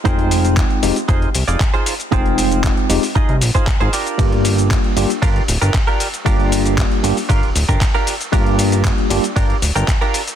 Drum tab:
RD |----------------|----------------|x---x---x---x---|x---x---x---x---|
HH |xxoxxxoxxxoxxxox|xxoxxxooxxoxxxox|xxoxxxoxxxoxxxox|xxoxxxooxxo-xxox|
SH |x-xxx-xxx-xxx-xx|x-xxx-xxx-xxx-xx|x-xxx-xxx-xxx-xx|x-xxx-xxx-xxx-xx|
CP |----x-------x---|----x-------x---|----x-------x---|----x-------x---|
BD |o---o---o---o---|o---o---o--oo---|o---o---o---o---|o---o---o--oo---|

RD |x---x---x---x---|
HH |xxoxxxoxxxoxxxox|
SH |x-xxx-xxx-xxx-xx|
CP |----x-------x---|
BD |o---o---o---o---|